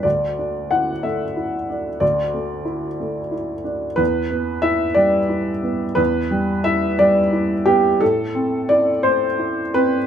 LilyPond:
<<
  \new Staff \with { instrumentName = "Upright piano" } { \time 6/8 \key e \minor \tempo 4. = 60 d''4 fis''8 e''4. | d''2 r4 | b'4 e''8 d''4. | b'4 e''8 d''4 g'8 |
a'4 d''8 c''4 b'8 | }
  \new Staff \with { instrumentName = "Upright piano" } { \time 6/8 \key e \minor d,8 d'8 e'8 a8 e'8 d'8 | d,8 a8 e'8 a8 e'8 d'8 | e,8 b8 e'8 g8 e'8 b8 | e,8 g8 e'8 g8 e'8 b8 |
a,8 c'8 e'8 a8 e'8 c'8 | }
>>